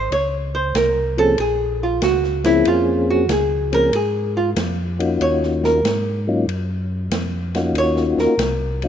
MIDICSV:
0, 0, Header, 1, 5, 480
1, 0, Start_track
1, 0, Key_signature, -5, "minor"
1, 0, Tempo, 636943
1, 87, Time_signature, 4, 2, 24, 8
1, 6693, End_track
2, 0, Start_track
2, 0, Title_t, "Hollow-body jazz guitar"
2, 0, Program_c, 0, 26
2, 0, Note_on_c, 0, 72, 91
2, 83, Note_off_c, 0, 72, 0
2, 94, Note_on_c, 0, 73, 99
2, 407, Note_off_c, 0, 73, 0
2, 412, Note_on_c, 0, 72, 81
2, 562, Note_off_c, 0, 72, 0
2, 573, Note_on_c, 0, 70, 75
2, 887, Note_off_c, 0, 70, 0
2, 896, Note_on_c, 0, 69, 90
2, 1044, Note_off_c, 0, 69, 0
2, 1056, Note_on_c, 0, 68, 80
2, 1369, Note_off_c, 0, 68, 0
2, 1381, Note_on_c, 0, 65, 69
2, 1527, Note_off_c, 0, 65, 0
2, 1532, Note_on_c, 0, 66, 88
2, 1847, Note_off_c, 0, 66, 0
2, 1851, Note_on_c, 0, 64, 91
2, 2002, Note_off_c, 0, 64, 0
2, 2016, Note_on_c, 0, 65, 76
2, 2329, Note_off_c, 0, 65, 0
2, 2339, Note_on_c, 0, 66, 77
2, 2486, Note_off_c, 0, 66, 0
2, 2498, Note_on_c, 0, 68, 85
2, 2810, Note_off_c, 0, 68, 0
2, 2821, Note_on_c, 0, 70, 100
2, 2967, Note_off_c, 0, 70, 0
2, 2980, Note_on_c, 0, 68, 69
2, 3289, Note_off_c, 0, 68, 0
2, 3292, Note_on_c, 0, 65, 72
2, 3385, Note_off_c, 0, 65, 0
2, 3932, Note_on_c, 0, 73, 93
2, 4246, Note_off_c, 0, 73, 0
2, 4258, Note_on_c, 0, 70, 65
2, 4706, Note_off_c, 0, 70, 0
2, 5864, Note_on_c, 0, 73, 110
2, 6172, Note_off_c, 0, 73, 0
2, 6180, Note_on_c, 0, 70, 66
2, 6626, Note_off_c, 0, 70, 0
2, 6693, End_track
3, 0, Start_track
3, 0, Title_t, "Tonewheel organ"
3, 0, Program_c, 1, 16
3, 884, Note_on_c, 1, 53, 63
3, 889, Note_on_c, 1, 58, 57
3, 890, Note_on_c, 1, 61, 59
3, 892, Note_on_c, 1, 60, 58
3, 898, Note_on_c, 1, 68, 79
3, 1027, Note_off_c, 1, 53, 0
3, 1030, Note_off_c, 1, 58, 0
3, 1030, Note_off_c, 1, 61, 0
3, 1031, Note_off_c, 1, 60, 0
3, 1034, Note_off_c, 1, 68, 0
3, 1848, Note_on_c, 1, 53, 72
3, 1853, Note_on_c, 1, 60, 69
3, 1854, Note_on_c, 1, 58, 67
3, 1856, Note_on_c, 1, 61, 68
3, 1861, Note_on_c, 1, 68, 81
3, 2454, Note_off_c, 1, 53, 0
3, 2457, Note_off_c, 1, 58, 0
3, 2457, Note_off_c, 1, 60, 0
3, 2458, Note_off_c, 1, 61, 0
3, 2461, Note_off_c, 1, 68, 0
3, 2806, Note_on_c, 1, 53, 65
3, 2806, Note_on_c, 1, 58, 66
3, 2807, Note_on_c, 1, 60, 66
3, 2811, Note_on_c, 1, 61, 59
3, 2814, Note_on_c, 1, 68, 72
3, 2948, Note_off_c, 1, 53, 0
3, 2949, Note_off_c, 1, 58, 0
3, 2949, Note_off_c, 1, 60, 0
3, 2951, Note_off_c, 1, 61, 0
3, 2952, Note_off_c, 1, 68, 0
3, 3763, Note_on_c, 1, 66, 70
3, 3764, Note_on_c, 1, 58, 56
3, 3767, Note_on_c, 1, 61, 58
3, 3769, Note_on_c, 1, 63, 52
3, 3772, Note_on_c, 1, 65, 72
3, 4371, Note_off_c, 1, 66, 0
3, 4372, Note_off_c, 1, 58, 0
3, 4373, Note_off_c, 1, 61, 0
3, 4374, Note_off_c, 1, 63, 0
3, 4376, Note_off_c, 1, 65, 0
3, 4727, Note_on_c, 1, 54, 66
3, 4731, Note_on_c, 1, 58, 59
3, 4735, Note_on_c, 1, 61, 59
3, 4735, Note_on_c, 1, 63, 67
3, 4737, Note_on_c, 1, 65, 81
3, 4869, Note_off_c, 1, 54, 0
3, 4871, Note_off_c, 1, 58, 0
3, 4873, Note_off_c, 1, 61, 0
3, 4873, Note_off_c, 1, 63, 0
3, 4874, Note_off_c, 1, 65, 0
3, 5691, Note_on_c, 1, 66, 72
3, 5694, Note_on_c, 1, 58, 61
3, 5698, Note_on_c, 1, 63, 65
3, 5699, Note_on_c, 1, 61, 67
3, 5702, Note_on_c, 1, 65, 74
3, 6295, Note_off_c, 1, 66, 0
3, 6296, Note_off_c, 1, 58, 0
3, 6298, Note_off_c, 1, 63, 0
3, 6299, Note_off_c, 1, 61, 0
3, 6300, Note_off_c, 1, 65, 0
3, 6656, Note_on_c, 1, 54, 63
3, 6659, Note_on_c, 1, 58, 58
3, 6659, Note_on_c, 1, 61, 63
3, 6662, Note_on_c, 1, 63, 52
3, 6664, Note_on_c, 1, 65, 69
3, 6693, Note_off_c, 1, 54, 0
3, 6693, Note_off_c, 1, 58, 0
3, 6693, Note_off_c, 1, 61, 0
3, 6693, Note_off_c, 1, 63, 0
3, 6693, Note_off_c, 1, 65, 0
3, 6693, End_track
4, 0, Start_track
4, 0, Title_t, "Tonewheel organ"
4, 0, Program_c, 2, 16
4, 80, Note_on_c, 2, 37, 69
4, 549, Note_off_c, 2, 37, 0
4, 560, Note_on_c, 2, 36, 90
4, 1030, Note_off_c, 2, 36, 0
4, 1043, Note_on_c, 2, 34, 77
4, 1511, Note_off_c, 2, 34, 0
4, 1520, Note_on_c, 2, 37, 81
4, 1990, Note_off_c, 2, 37, 0
4, 2005, Note_on_c, 2, 41, 83
4, 2472, Note_off_c, 2, 41, 0
4, 2477, Note_on_c, 2, 37, 92
4, 2948, Note_off_c, 2, 37, 0
4, 2955, Note_on_c, 2, 44, 75
4, 3427, Note_off_c, 2, 44, 0
4, 3438, Note_on_c, 2, 41, 88
4, 3908, Note_off_c, 2, 41, 0
4, 3921, Note_on_c, 2, 39, 77
4, 4390, Note_off_c, 2, 39, 0
4, 4396, Note_on_c, 2, 44, 89
4, 4867, Note_off_c, 2, 44, 0
4, 4878, Note_on_c, 2, 42, 81
4, 5348, Note_off_c, 2, 42, 0
4, 5355, Note_on_c, 2, 41, 75
4, 5826, Note_off_c, 2, 41, 0
4, 5827, Note_on_c, 2, 39, 79
4, 6140, Note_off_c, 2, 39, 0
4, 6158, Note_on_c, 2, 39, 34
4, 6238, Note_off_c, 2, 39, 0
4, 6311, Note_on_c, 2, 36, 96
4, 6693, Note_off_c, 2, 36, 0
4, 6693, End_track
5, 0, Start_track
5, 0, Title_t, "Drums"
5, 90, Note_on_c, 9, 51, 51
5, 165, Note_off_c, 9, 51, 0
5, 565, Note_on_c, 9, 44, 58
5, 565, Note_on_c, 9, 51, 68
5, 568, Note_on_c, 9, 38, 69
5, 640, Note_off_c, 9, 44, 0
5, 640, Note_off_c, 9, 51, 0
5, 643, Note_off_c, 9, 38, 0
5, 891, Note_on_c, 9, 51, 47
5, 966, Note_off_c, 9, 51, 0
5, 1039, Note_on_c, 9, 51, 61
5, 1115, Note_off_c, 9, 51, 0
5, 1520, Note_on_c, 9, 44, 62
5, 1520, Note_on_c, 9, 51, 69
5, 1523, Note_on_c, 9, 38, 74
5, 1595, Note_off_c, 9, 44, 0
5, 1595, Note_off_c, 9, 51, 0
5, 1598, Note_off_c, 9, 38, 0
5, 1683, Note_on_c, 9, 38, 24
5, 1758, Note_off_c, 9, 38, 0
5, 1840, Note_on_c, 9, 38, 48
5, 1842, Note_on_c, 9, 51, 55
5, 1916, Note_off_c, 9, 38, 0
5, 1918, Note_off_c, 9, 51, 0
5, 1999, Note_on_c, 9, 51, 59
5, 2075, Note_off_c, 9, 51, 0
5, 2480, Note_on_c, 9, 44, 66
5, 2480, Note_on_c, 9, 51, 65
5, 2483, Note_on_c, 9, 38, 66
5, 2555, Note_off_c, 9, 44, 0
5, 2555, Note_off_c, 9, 51, 0
5, 2558, Note_off_c, 9, 38, 0
5, 2808, Note_on_c, 9, 51, 52
5, 2884, Note_off_c, 9, 51, 0
5, 2962, Note_on_c, 9, 51, 64
5, 3037, Note_off_c, 9, 51, 0
5, 3439, Note_on_c, 9, 44, 61
5, 3439, Note_on_c, 9, 51, 76
5, 3442, Note_on_c, 9, 38, 71
5, 3514, Note_off_c, 9, 44, 0
5, 3514, Note_off_c, 9, 51, 0
5, 3517, Note_off_c, 9, 38, 0
5, 3770, Note_on_c, 9, 51, 52
5, 3845, Note_off_c, 9, 51, 0
5, 3925, Note_on_c, 9, 51, 56
5, 4000, Note_off_c, 9, 51, 0
5, 4091, Note_on_c, 9, 38, 30
5, 4166, Note_off_c, 9, 38, 0
5, 4249, Note_on_c, 9, 38, 48
5, 4324, Note_off_c, 9, 38, 0
5, 4408, Note_on_c, 9, 44, 49
5, 4408, Note_on_c, 9, 51, 70
5, 4411, Note_on_c, 9, 38, 69
5, 4483, Note_off_c, 9, 44, 0
5, 4483, Note_off_c, 9, 51, 0
5, 4486, Note_off_c, 9, 38, 0
5, 4889, Note_on_c, 9, 51, 60
5, 4964, Note_off_c, 9, 51, 0
5, 5361, Note_on_c, 9, 44, 59
5, 5361, Note_on_c, 9, 51, 70
5, 5364, Note_on_c, 9, 38, 73
5, 5437, Note_off_c, 9, 44, 0
5, 5437, Note_off_c, 9, 51, 0
5, 5440, Note_off_c, 9, 38, 0
5, 5687, Note_on_c, 9, 51, 52
5, 5690, Note_on_c, 9, 38, 42
5, 5762, Note_off_c, 9, 51, 0
5, 5765, Note_off_c, 9, 38, 0
5, 5842, Note_on_c, 9, 51, 60
5, 5917, Note_off_c, 9, 51, 0
5, 6001, Note_on_c, 9, 38, 31
5, 6077, Note_off_c, 9, 38, 0
5, 6167, Note_on_c, 9, 38, 45
5, 6242, Note_off_c, 9, 38, 0
5, 6322, Note_on_c, 9, 44, 57
5, 6322, Note_on_c, 9, 51, 75
5, 6325, Note_on_c, 9, 38, 74
5, 6397, Note_off_c, 9, 44, 0
5, 6397, Note_off_c, 9, 51, 0
5, 6400, Note_off_c, 9, 38, 0
5, 6647, Note_on_c, 9, 51, 47
5, 6693, Note_off_c, 9, 51, 0
5, 6693, End_track
0, 0, End_of_file